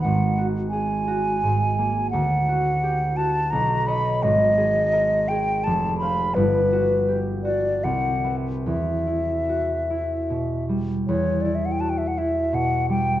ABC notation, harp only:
X:1
M:3/4
L:1/8
Q:1/4=83
K:F#phr
V:1 name="Harp"
^G,,, F ^G F ^G,, ^A, | D,, F G F B,,, [c^d] | ^G,,, ^G ^A G =F,,, [=c=f] | G,,, F G F =C,, [Be] |
E,, E F E B,, G, | E,, E F E B,, G, |]